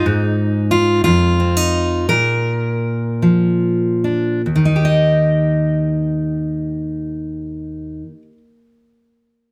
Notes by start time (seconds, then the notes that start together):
Already playing: D#4
0.06 G#2
0.71 F4
1.04 F2 F4
1.40 C4
1.57 D#4
2.09 A#2 A#4
3.22 F3
4.04 D4
4.46 D#2
4.56 D#3
4.65 D#4
4.76 G4
4.85 D#5